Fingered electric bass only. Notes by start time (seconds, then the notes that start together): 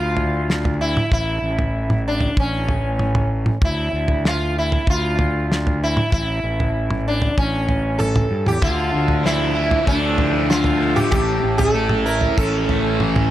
Already playing: D2
1.11 A1
1.42 A1
2.37 A1
3.62 D2
3.93 D2
4.87 D2
6.13 A1
6.43 A1
7.38 A1
8.31 G2
8.47 E2
8.62 D2
8.94 D2
9.88 D2
11.13 A1
11.43 A1
12.38 A1